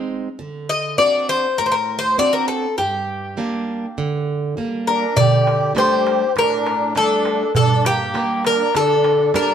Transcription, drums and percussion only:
0, 0, Header, 1, 2, 480
1, 0, Start_track
1, 0, Key_signature, -2, "minor"
1, 0, Tempo, 596421
1, 317, Time_signature, 4, 2, 24, 8
1, 7680, End_track
2, 0, Start_track
2, 0, Title_t, "Darbuka"
2, 4161, Note_on_c, 9, 64, 82
2, 4242, Note_off_c, 9, 64, 0
2, 4287, Note_on_c, 9, 63, 25
2, 4367, Note_off_c, 9, 63, 0
2, 4405, Note_on_c, 9, 63, 62
2, 4485, Note_off_c, 9, 63, 0
2, 4640, Note_on_c, 9, 63, 71
2, 4720, Note_off_c, 9, 63, 0
2, 4882, Note_on_c, 9, 63, 67
2, 4963, Note_off_c, 9, 63, 0
2, 5123, Note_on_c, 9, 63, 69
2, 5204, Note_off_c, 9, 63, 0
2, 5245, Note_on_c, 9, 63, 28
2, 5325, Note_off_c, 9, 63, 0
2, 5364, Note_on_c, 9, 63, 69
2, 5444, Note_off_c, 9, 63, 0
2, 5598, Note_on_c, 9, 63, 63
2, 5679, Note_off_c, 9, 63, 0
2, 5721, Note_on_c, 9, 63, 25
2, 5801, Note_off_c, 9, 63, 0
2, 5837, Note_on_c, 9, 63, 71
2, 5918, Note_off_c, 9, 63, 0
2, 6074, Note_on_c, 9, 64, 79
2, 6155, Note_off_c, 9, 64, 0
2, 6200, Note_on_c, 9, 63, 23
2, 6280, Note_off_c, 9, 63, 0
2, 6317, Note_on_c, 9, 63, 65
2, 6398, Note_off_c, 9, 63, 0
2, 6559, Note_on_c, 9, 63, 72
2, 6639, Note_off_c, 9, 63, 0
2, 6797, Note_on_c, 9, 63, 68
2, 6878, Note_off_c, 9, 63, 0
2, 7038, Note_on_c, 9, 63, 68
2, 7119, Note_off_c, 9, 63, 0
2, 7157, Note_on_c, 9, 63, 25
2, 7238, Note_off_c, 9, 63, 0
2, 7279, Note_on_c, 9, 63, 70
2, 7359, Note_off_c, 9, 63, 0
2, 7519, Note_on_c, 9, 63, 66
2, 7600, Note_off_c, 9, 63, 0
2, 7642, Note_on_c, 9, 63, 21
2, 7680, Note_off_c, 9, 63, 0
2, 7680, End_track
0, 0, End_of_file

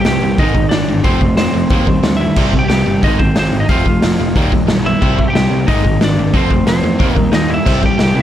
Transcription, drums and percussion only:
0, 0, Header, 1, 2, 480
1, 0, Start_track
1, 0, Tempo, 330761
1, 1506, Time_signature, 4, 2, 24, 8
1, 11929, End_track
2, 0, Start_track
2, 0, Title_t, "Drums"
2, 70, Note_on_c, 9, 46, 61
2, 71, Note_on_c, 9, 38, 102
2, 215, Note_off_c, 9, 46, 0
2, 216, Note_off_c, 9, 38, 0
2, 551, Note_on_c, 9, 46, 62
2, 557, Note_on_c, 9, 36, 118
2, 696, Note_off_c, 9, 46, 0
2, 702, Note_off_c, 9, 36, 0
2, 794, Note_on_c, 9, 36, 84
2, 939, Note_off_c, 9, 36, 0
2, 1035, Note_on_c, 9, 46, 61
2, 1036, Note_on_c, 9, 38, 113
2, 1180, Note_off_c, 9, 46, 0
2, 1181, Note_off_c, 9, 38, 0
2, 1508, Note_on_c, 9, 46, 60
2, 1515, Note_on_c, 9, 36, 115
2, 1653, Note_off_c, 9, 46, 0
2, 1660, Note_off_c, 9, 36, 0
2, 1756, Note_on_c, 9, 36, 89
2, 1901, Note_off_c, 9, 36, 0
2, 1993, Note_on_c, 9, 46, 61
2, 1994, Note_on_c, 9, 38, 109
2, 2138, Note_off_c, 9, 46, 0
2, 2140, Note_off_c, 9, 38, 0
2, 2460, Note_on_c, 9, 46, 58
2, 2474, Note_on_c, 9, 36, 111
2, 2605, Note_off_c, 9, 46, 0
2, 2619, Note_off_c, 9, 36, 0
2, 2714, Note_on_c, 9, 36, 86
2, 2860, Note_off_c, 9, 36, 0
2, 2952, Note_on_c, 9, 46, 58
2, 2953, Note_on_c, 9, 38, 117
2, 3097, Note_off_c, 9, 46, 0
2, 3098, Note_off_c, 9, 38, 0
2, 3427, Note_on_c, 9, 49, 99
2, 3435, Note_on_c, 9, 36, 106
2, 3572, Note_off_c, 9, 49, 0
2, 3580, Note_off_c, 9, 36, 0
2, 3674, Note_on_c, 9, 36, 86
2, 3819, Note_off_c, 9, 36, 0
2, 3912, Note_on_c, 9, 46, 55
2, 3914, Note_on_c, 9, 38, 117
2, 4058, Note_off_c, 9, 46, 0
2, 4059, Note_off_c, 9, 38, 0
2, 4397, Note_on_c, 9, 36, 109
2, 4401, Note_on_c, 9, 46, 57
2, 4542, Note_off_c, 9, 36, 0
2, 4546, Note_off_c, 9, 46, 0
2, 4637, Note_on_c, 9, 36, 90
2, 4782, Note_off_c, 9, 36, 0
2, 4871, Note_on_c, 9, 46, 63
2, 4872, Note_on_c, 9, 38, 113
2, 5016, Note_off_c, 9, 46, 0
2, 5017, Note_off_c, 9, 38, 0
2, 5348, Note_on_c, 9, 46, 59
2, 5357, Note_on_c, 9, 36, 109
2, 5493, Note_off_c, 9, 46, 0
2, 5502, Note_off_c, 9, 36, 0
2, 5599, Note_on_c, 9, 36, 88
2, 5744, Note_off_c, 9, 36, 0
2, 5839, Note_on_c, 9, 46, 60
2, 5840, Note_on_c, 9, 38, 110
2, 5984, Note_off_c, 9, 46, 0
2, 5985, Note_off_c, 9, 38, 0
2, 6323, Note_on_c, 9, 36, 106
2, 6325, Note_on_c, 9, 46, 62
2, 6468, Note_off_c, 9, 36, 0
2, 6470, Note_off_c, 9, 46, 0
2, 6561, Note_on_c, 9, 36, 90
2, 6707, Note_off_c, 9, 36, 0
2, 6797, Note_on_c, 9, 46, 57
2, 6798, Note_on_c, 9, 38, 118
2, 6942, Note_off_c, 9, 46, 0
2, 6943, Note_off_c, 9, 38, 0
2, 7284, Note_on_c, 9, 36, 107
2, 7286, Note_on_c, 9, 57, 93
2, 7430, Note_off_c, 9, 36, 0
2, 7431, Note_off_c, 9, 57, 0
2, 7526, Note_on_c, 9, 36, 89
2, 7671, Note_off_c, 9, 36, 0
2, 7768, Note_on_c, 9, 46, 53
2, 7770, Note_on_c, 9, 38, 107
2, 7914, Note_off_c, 9, 46, 0
2, 7915, Note_off_c, 9, 38, 0
2, 8241, Note_on_c, 9, 46, 60
2, 8244, Note_on_c, 9, 36, 117
2, 8386, Note_off_c, 9, 46, 0
2, 8389, Note_off_c, 9, 36, 0
2, 8484, Note_on_c, 9, 36, 86
2, 8629, Note_off_c, 9, 36, 0
2, 8721, Note_on_c, 9, 46, 57
2, 8723, Note_on_c, 9, 38, 120
2, 8866, Note_off_c, 9, 46, 0
2, 8868, Note_off_c, 9, 38, 0
2, 9197, Note_on_c, 9, 36, 108
2, 9199, Note_on_c, 9, 46, 60
2, 9342, Note_off_c, 9, 36, 0
2, 9344, Note_off_c, 9, 46, 0
2, 9440, Note_on_c, 9, 36, 91
2, 9585, Note_off_c, 9, 36, 0
2, 9676, Note_on_c, 9, 46, 59
2, 9678, Note_on_c, 9, 38, 109
2, 9821, Note_off_c, 9, 46, 0
2, 9823, Note_off_c, 9, 38, 0
2, 10158, Note_on_c, 9, 36, 114
2, 10159, Note_on_c, 9, 46, 60
2, 10304, Note_off_c, 9, 36, 0
2, 10304, Note_off_c, 9, 46, 0
2, 10398, Note_on_c, 9, 36, 88
2, 10543, Note_off_c, 9, 36, 0
2, 10634, Note_on_c, 9, 46, 67
2, 10635, Note_on_c, 9, 38, 120
2, 10779, Note_off_c, 9, 46, 0
2, 10781, Note_off_c, 9, 38, 0
2, 11122, Note_on_c, 9, 36, 113
2, 11123, Note_on_c, 9, 49, 94
2, 11267, Note_off_c, 9, 36, 0
2, 11268, Note_off_c, 9, 49, 0
2, 11362, Note_on_c, 9, 36, 88
2, 11507, Note_off_c, 9, 36, 0
2, 11595, Note_on_c, 9, 46, 56
2, 11596, Note_on_c, 9, 38, 106
2, 11740, Note_off_c, 9, 46, 0
2, 11741, Note_off_c, 9, 38, 0
2, 11929, End_track
0, 0, End_of_file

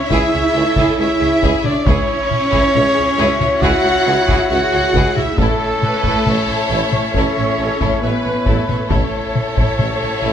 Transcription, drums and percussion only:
0, 0, Header, 1, 2, 480
1, 0, Start_track
1, 0, Key_signature, 4, "minor"
1, 0, Tempo, 881057
1, 1023, Time_signature, 4, 2, 24, 8
1, 5627, End_track
2, 0, Start_track
2, 0, Title_t, "Taiko and cinematic ensemble drums"
2, 57, Note_on_c, 9, 41, 81
2, 111, Note_off_c, 9, 41, 0
2, 415, Note_on_c, 9, 41, 88
2, 470, Note_off_c, 9, 41, 0
2, 779, Note_on_c, 9, 41, 85
2, 833, Note_off_c, 9, 41, 0
2, 895, Note_on_c, 9, 47, 53
2, 949, Note_off_c, 9, 47, 0
2, 1016, Note_on_c, 9, 41, 110
2, 1071, Note_off_c, 9, 41, 0
2, 1258, Note_on_c, 9, 47, 61
2, 1313, Note_off_c, 9, 47, 0
2, 1375, Note_on_c, 9, 41, 83
2, 1430, Note_off_c, 9, 41, 0
2, 1498, Note_on_c, 9, 47, 63
2, 1553, Note_off_c, 9, 47, 0
2, 1856, Note_on_c, 9, 47, 54
2, 1910, Note_off_c, 9, 47, 0
2, 1974, Note_on_c, 9, 41, 77
2, 2029, Note_off_c, 9, 41, 0
2, 2333, Note_on_c, 9, 41, 80
2, 2388, Note_off_c, 9, 41, 0
2, 2693, Note_on_c, 9, 41, 86
2, 2747, Note_off_c, 9, 41, 0
2, 2815, Note_on_c, 9, 47, 48
2, 2869, Note_off_c, 9, 47, 0
2, 2932, Note_on_c, 9, 41, 106
2, 2986, Note_off_c, 9, 41, 0
2, 3173, Note_on_c, 9, 47, 58
2, 3228, Note_off_c, 9, 47, 0
2, 3290, Note_on_c, 9, 41, 80
2, 3345, Note_off_c, 9, 41, 0
2, 3412, Note_on_c, 9, 47, 59
2, 3466, Note_off_c, 9, 47, 0
2, 3772, Note_on_c, 9, 47, 54
2, 3826, Note_off_c, 9, 47, 0
2, 3891, Note_on_c, 9, 41, 74
2, 3945, Note_off_c, 9, 41, 0
2, 4253, Note_on_c, 9, 41, 87
2, 4308, Note_off_c, 9, 41, 0
2, 4610, Note_on_c, 9, 41, 79
2, 4664, Note_off_c, 9, 41, 0
2, 4734, Note_on_c, 9, 47, 51
2, 4789, Note_off_c, 9, 47, 0
2, 4852, Note_on_c, 9, 41, 96
2, 4907, Note_off_c, 9, 41, 0
2, 5096, Note_on_c, 9, 47, 61
2, 5150, Note_off_c, 9, 47, 0
2, 5214, Note_on_c, 9, 41, 81
2, 5268, Note_off_c, 9, 41, 0
2, 5334, Note_on_c, 9, 47, 60
2, 5388, Note_off_c, 9, 47, 0
2, 5627, End_track
0, 0, End_of_file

